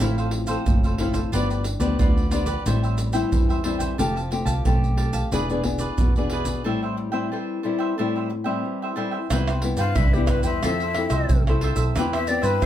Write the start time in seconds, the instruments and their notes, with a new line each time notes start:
0.00 fingered electric bass A1, nylon-string guitar A2 F3 C4 E4, cavaquinho E4 A4 C5 F5, pandeiro, maracas, surdo
0.18 cavaquinho A4 C5 F5, pandeiro, maracas
0.31 muted cavaquinho stroke, pandeiro
0.47 nylon-string guitar F3 C4, cavaquinho A4 C5 F5, pandeiro, maracas
0.66 fingered electric bass F#1, nylon-string guitar A2, pandeiro, maracas, surdo
0.84 cavaquinho A4 C5 F5, pandeiro, maracas, surdo
0.98 nylon-string guitar F3 C4 E4, cavaquinho E4 A4 C5 F5, pandeiro
1.13 cavaquinho A4 C5 F5, pandeiro, maracas, surdo
1.32 fingered electric bass G1, nylon-string guitar G2 F3 B3 D4, cavaquinho F4 G4 B4 D5, pandeiro, maracas, surdo
1.50 cavaquinho G4 B4 D5, pandeiro, maracas
1.64 muted cavaquinho stroke, pandeiro, maracas
1.80 fingered electric bass D2, nylon-string guitar F3 B3 D4, cavaquinho G4 B4 D5, pandeiro, maracas, surdo
1.99 fingered electric bass D2, nylon-string guitar D3, cavaquinho F4 G4 B4 D5, pandeiro, maracas, surdo
2.17 pandeiro, maracas
2.31 nylon-string guitar F3 B3 D4, cavaquinho F4 G4 B4 D5, pandeiro, maracas
2.46 cavaquinho G4 B4 D5, pandeiro, maracas, surdo
2.66 fingered electric bass A1, nylon-string guitar A2 G3 C4 E4, cavaquinho A4 C5 E5 G5, pandeiro, maracas, surdo
2.83 cavaquinho C5 E5 G5, pandeiro, maracas
2.98 muted cavaquinho stroke, pandeiro, maracas
3.13 nylon-string guitar G3 C4 E4, cavaquinho C5 E5 G5, pandeiro, maracas
3.32 fingered electric bass E2, nylon-string guitar E3, pandeiro, maracas, surdo
3.49 cavaquinho C5 E5 G5, pandeiro, maracas, surdo
3.64 nylon-string guitar G3 C4 E4, cavaquinho A4 C5 E5 G5, pandeiro
3.79 cavaquinho C5 E5 G5, pandeiro, maracas, surdo
3.98 fingered electric bass F1, nylon-string guitar F3 A3 C4 G4, cavaquinho G4 A4 F5 A5, pandeiro, maracas, surdo
4.16 cavaquinho G4 F5 A5, pandeiro, maracas
4.31 nylon-string guitar A3 C4 G4, muted cavaquinho stroke, pandeiro
4.45 fingered electric bass C2, cavaquinho G4 F5 A5, pandeiro, maracas, surdo
4.65 fingered electric bass B1, nylon-string guitar A3 C4 G4, cavaquinho G4 A4 F5 A5, pandeiro, maracas, surdo
4.84 pandeiro, maracas
4.97 cavaquinho G4 A4 F5 A5, pandeiro
5.13 cavaquinho G4 F5 A5, pandeiro, maracas, surdo
5.32 fingered electric bass E1, nylon-string guitar E3 B3 D4 G#4, cavaquinho E4 G#4 B4 D5, pandeiro, maracas, surdo
5.50 nylon-string guitar B3 D4 G#4, cavaquinho G#4 B4 D5, pandeiro, maracas
5.64 nylon-string guitar B3 D4 G#4, muted cavaquinho stroke, pandeiro, surdo
5.79 cavaquinho G#4 B4 D5, pandeiro, maracas
5.98 fingered electric bass E2, nylon-string guitar B2, pandeiro, maracas, surdo
6.16 nylon-string guitar B3 D4 G#4, cavaquinho G#4 B4 D5, pandeiro, maracas, surdo
6.30 cavaquinho E4 G#4 B4 D5, pandeiro
6.45 cavaquinho G#4 B4 D5, pandeiro, maracas, surdo
6.64 nylon-string guitar A2 G3 C4 E4, cavaquinho A4 C5 E5 G5
6.83 cavaquinho C5 E5 G5
6.97 muted cavaquinho stroke
7.12 nylon-string guitar G3 C4 E4, cavaquinho C5 E5 G5
7.32 nylon-string guitar E3, cavaquinho A4 C5 E5 G5
7.63 nylon-string guitar G3 C4 E4, cavaquinho A4 C5 E5 G5
7.79 cavaquinho C5 E5 G5
7.98 nylon-string guitar A2 G3 C4 E4, cavaquinho A4 C5 E5 G5
8.15 cavaquinho C5 E5 G5
8.29 muted cavaquinho stroke
8.44 nylon-string guitar G3 C4 E4, cavaquinho C5 E5 G5
8.65 nylon-string guitar E3
8.82 cavaquinho C5 E5 G5
8.96 nylon-string guitar G3 C4 E4, cavaquinho A4 C5 E5 G5
9.11 cavaquinho C5 E5 G5
9.30 fingered electric bass C2, nylon-string guitar C3 G3 B3 E4, cavaquinho E4 B4 C5 G5, pandeiro, tamborim, maracas, surdo
9.48 cavaquinho B4 C5 G5, pandeiro, tamborim, maracas
9.62 nylon-string guitar G3 B3 E4, muted cavaquinho stroke, pandeiro
9.77 fingered electric bass G2, cavaquinho B4 C5 G5, flute F5, pandeiro, maracas
9.96 fingered electric bass C2, nylon-string guitar G2, cavaquinho E4 B4 C5 G5, flute E5, pandeiro, tamborim, maracas, surdo
10.14 nylon-string guitar G3 B3 E4, flute G4, pandeiro, maracas
10.27 cavaquinho E4 B4 C5 G5, flute B4, pandeiro, tamborim, maracas, surdo
10.43 fingered electric bass E2, cavaquinho B4 C5 G5, flute E5, pandeiro, maracas
10.63 fingered electric bass F2, nylon-string guitar F3 C4 E4 A4, cavaquinho F4 A4 C5 E5, pandeiro, tamborim, maracas, surdo
10.80 cavaquinho A4 C5 E5, pandeiro, maracas
10.94 nylon-string guitar C4 E4 A4, muted cavaquinho stroke, pandeiro, tamborim
11.10 fingered electric bass C2, cavaquinho A4 C5 E5, pandeiro, tamborim, maracas
11.29 fingered electric bass C2, nylon-string guitar C3, pandeiro, maracas, surdo
11.47 nylon-string guitar C4 E4 A4, cavaquinho A4 C5 E5, pandeiro, tamborim, maracas
11.61 cavaquinho F4 A4 C5 E5, pandeiro
11.76 fingered electric bass B1, cavaquinho A4 C5 E5, pandeiro, maracas
11.95 fingered electric bass E2, nylon-string guitar E3 B3 C4 G4, cavaquinho E4 B4 C5 E5, pandeiro, tamborim, maracas, surdo
12.13 cavaquinho B4 C5 E5, flute E5, pandeiro, tamborim, maracas
12.27 nylon-string guitar B3 C4 G4, flute D5, muted cavaquinho stroke, pandeiro, maracas
12.42 fingered electric bass G2, cavaquinho B4 C5 E5, flute B4, pandeiro, maracas
12.62 fingered electric bass E2, cavaquinho E4 B4 C5, pandeiro, tamborim, maracas, surdo